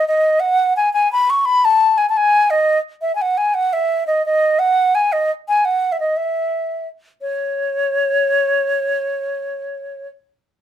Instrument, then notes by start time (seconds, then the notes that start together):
flute
0.08 D#5
0.40 F#5
0.76 G#5
0.93 G#5
1.12 B5
1.30 C#6
1.45 B5
1.65 A5
1.98 G#5
2.09 A5
2.17 G#5
2.50 D#5
3.02 E5
3.15 G#5
3.22 F#5
3.38 G#5
3.54 F#5
3.73 E5
4.07 D#5
4.26 D#5
4.59 F#5
4.95 G#5
5.12 D#5
5.48 G#5
5.65 F#5
5.92 E5
6.00 D#5
6.17 E5
7.21 C#5